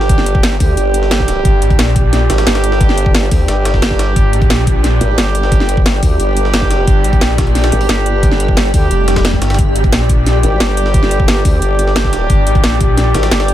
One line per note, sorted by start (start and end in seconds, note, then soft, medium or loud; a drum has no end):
0.00 0.59 G1 loud
0.00 0.58 G3 medium
0.00 0.58 D4 medium
0.00 0.58 G4 loud
0.00 13.54 G4 medium
0.00 13.54 D5 medium
0.00 13.54 G5 medium
0.00 snare medium
0.09 kick loud
0.09 closed hi-hat medium
0.18 snare soft
0.26 closed hi-hat loud
0.26 closed hi-hat medium
0.35 kick loud
0.43 snare loud
0.43 closed hi-hat medium
0.52 closed hi-hat soft
0.60 0.76 D2 loud
0.60 1.94 G3 loud
0.60 1.94 D4 medium
0.60 1.94 G4 loud
0.60 kick loud
0.60 closed hi-hat loud
0.60 open hi-hat medium
0.77 1.44 G1 loud
0.77 closed hi-hat medium
0.94 closed hi-hat loud
0.94 closed hi-hat medium
1.03 snare soft
1.11 snare loud
1.11 closed hi-hat medium
1.20 kick medium
1.20 snare medium
1.28 snare medium
1.28 closed hi-hat loud
1.28 closed hi-hat medium
1.45 1.61 G1 loud
1.45 kick loud
1.45 closed hi-hat medium
1.62 1.78 G#1 loud
1.62 closed hi-hat medium
1.70 kick loud
1.70 closed hi-hat soft
1.79 2.28 A#1 loud
1.79 snare loud
1.79 closed hi-hat medium
1.96 3.29 G3 medium
1.96 3.29 D4 medium
1.96 3.29 G4 loud
1.96 kick loud
1.96 closed hi-hat loud
1.96 closed hi-hat medium
2.13 snare soft
2.13 closed hi-hat medium
2.30 2.45 G#1 loud
2.30 snare loud
2.30 closed hi-hat medium
2.30 closed hi-hat loud
2.38 snare loud
2.38 closed hi-hat medium
2.47 3.30 G1 loud
2.47 snare loud
2.47 closed hi-hat medium
2.55 snare loud
2.55 closed hi-hat medium
2.64 closed hi-hat medium
2.64 closed hi-hat loud
2.72 snare medium
2.81 kick loud
2.81 closed hi-hat medium
2.89 snare soft
2.98 closed hi-hat medium
3.06 kick loud
3.14 snare loud
3.14 closed hi-hat medium
3.23 closed hi-hat soft
3.31 3.47 D2 loud
3.31 4.65 G3 medium
3.31 4.65 D4 medium
3.31 4.65 G4 loud
3.31 kick loud
3.31 closed hi-hat medium
3.31 open hi-hat medium
3.48 3.81 G1 loud
3.48 snare loud
3.48 closed hi-hat medium
3.65 snare loud
3.65 closed hi-hat medium
3.74 kick medium
3.74 snare soft
3.82 4.15 G1 loud
3.82 snare loud
3.82 closed hi-hat medium
3.91 kick medium
3.91 snare medium
3.99 snare loud
3.99 closed hi-hat medium
4.16 4.32 G1 loud
4.16 kick loud
4.16 closed hi-hat medium
4.33 4.49 G#1 loud
4.33 closed hi-hat medium
4.42 kick loud
4.42 closed hi-hat soft
4.50 5.00 A#1 loud
4.50 snare loud
4.50 closed hi-hat medium
4.67 5.86 G3 loud
4.67 5.86 D4 medium
4.67 5.86 G4 loud
4.67 kick loud
4.67 closed hi-hat medium
4.84 snare soft
4.84 closed hi-hat medium
5.01 5.17 G#1 loud
5.01 closed hi-hat medium
5.18 6.01 G1 loud
5.18 snare loud
5.18 closed hi-hat medium
5.35 closed hi-hat medium
5.43 snare medium
5.52 kick loud
5.52 closed hi-hat medium
5.60 snare soft
5.69 closed hi-hat medium
5.77 kick loud
5.86 snare loud
5.86 closed hi-hat medium
5.94 closed hi-hat soft
6.03 6.18 D2 loud
6.03 7.36 G3 loud
6.03 7.36 D4 medium
6.03 7.36 G4 loud
6.03 kick loud
6.03 closed hi-hat medium
6.03 open hi-hat medium
6.20 6.67 G1 loud
6.20 closed hi-hat medium
6.37 closed hi-hat medium
6.45 snare soft
6.54 snare loud
6.54 closed hi-hat medium
6.62 kick medium
6.62 snare medium
6.67 6.86 F#1 loud
6.67 snare medium
6.67 closed hi-hat medium
6.87 7.03 G1 loud
6.87 kick loud
6.87 closed hi-hat medium
7.04 7.20 G#1 loud
7.04 closed hi-hat medium
7.13 kick loud
7.13 closed hi-hat soft
7.21 7.71 A#1 loud
7.21 snare loud
7.21 closed hi-hat medium
7.38 8.72 G3 medium
7.38 8.72 D4 medium
7.38 8.72 G4 loud
7.38 kick loud
7.38 snare loud
7.38 closed hi-hat loud
7.38 closed hi-hat medium
7.47 closed hi-hat soft
7.55 snare soft
7.55 closed hi-hat medium
7.55 open hi-hat medium
7.64 snare loud
7.64 closed hi-hat medium
7.72 7.88 G#1 loud
7.72 closed hi-hat medium
7.72 closed hi-hat soft
7.81 open hi-hat medium
7.89 8.73 G1 loud
7.89 snare loud
7.89 closed hi-hat medium
8.06 closed hi-hat medium
8.23 kick loud
8.23 closed hi-hat medium
8.31 snare soft
8.40 closed hi-hat medium
8.48 kick loud
8.57 snare loud
8.57 closed hi-hat medium
8.65 closed hi-hat soft
8.74 8.89 D2 loud
8.74 9.31 G3 medium
8.74 9.31 D4 medium
8.74 9.31 G4 loud
8.74 kick loud
8.74 closed hi-hat medium
8.74 open hi-hat medium
8.91 9.40 F1 loud
8.91 closed hi-hat medium
8.91 swell medium
9.08 snare loud
9.08 closed hi-hat loud
9.08 closed hi-hat medium
9.16 kick medium
9.16 snare loud
9.16 closed hi-hat medium
9.25 snare loud
9.25 closed hi-hat medium
9.33 9.39 G3 medium
9.33 9.39 D4 medium
9.33 9.39 G4 medium
9.33 kick medium
9.33 snare medium
9.42 9.57 G1 medium
9.42 snare loud
9.42 closed hi-hat loud
9.42 closed hi-hat medium
9.50 snare medium
9.50 closed hi-hat medium
9.54 snare medium
9.54 closed hi-hat medium
9.59 9.74 G1 loud
9.59 13.54 G4 medium
9.59 13.54 D5 medium
9.59 13.54 D6 medium
9.59 kick loud
9.59 closed hi-hat medium
9.76 9.91 G#1 loud
9.76 closed hi-hat loud
9.76 closed hi-hat medium
9.84 kick loud
9.84 closed hi-hat soft
9.92 10.42 A#1 loud
9.92 snare loud
9.92 closed hi-hat medium
10.09 11.43 G3 loud
10.09 11.43 D4 medium
10.09 11.43 G4 loud
10.09 kick loud
10.09 closed hi-hat loud
10.09 closed hi-hat medium
10.26 snare soft
10.26 closed hi-hat medium
10.43 10.59 G#1 loud
10.43 closed hi-hat loud
10.43 closed hi-hat medium
10.60 11.44 G1 loud
10.60 snare loud
10.60 closed hi-hat medium
10.77 closed hi-hat loud
10.77 closed hi-hat medium
10.86 snare medium
10.94 kick loud
10.94 closed hi-hat medium
11.03 snare soft
11.11 closed hi-hat loud
11.11 closed hi-hat medium
11.20 kick loud
11.28 snare loud
11.28 closed hi-hat medium
11.37 closed hi-hat soft
11.45 11.61 D2 loud
11.45 12.79 G3 loud
11.45 12.79 D4 medium
11.45 12.79 G4 loud
11.45 kick loud
11.45 closed hi-hat loud
11.45 open hi-hat medium
11.62 12.28 G1 loud
11.62 closed hi-hat medium
11.79 closed hi-hat loud
11.79 closed hi-hat medium
11.87 snare soft
11.96 snare loud
11.96 closed hi-hat medium
12.04 kick medium
12.04 snare medium
12.13 snare medium
12.13 closed hi-hat loud
12.13 closed hi-hat medium
12.30 12.45 G1 loud
12.30 kick loud
12.30 closed hi-hat medium
12.47 12.62 G#1 loud
12.47 closed hi-hat loud
12.47 closed hi-hat medium
12.55 kick loud
12.55 closed hi-hat soft
12.64 13.13 A#1 medium
12.64 snare loud
12.64 closed hi-hat medium
12.81 13.54 G3 loud
12.81 13.54 D4 medium
12.81 13.54 G4 loud
12.81 kick loud
12.81 closed hi-hat loud
12.81 closed hi-hat medium
12.97 snare soft
12.97 closed hi-hat medium
13.14 13.30 G#1 loud
13.14 snare loud
13.14 closed hi-hat loud
13.14 closed hi-hat medium
13.23 snare loud
13.23 closed hi-hat medium
13.31 13.54 G1 loud
13.31 snare loud
13.31 closed hi-hat medium
13.40 snare loud
13.40 closed hi-hat medium
13.48 closed hi-hat loud
13.48 closed hi-hat medium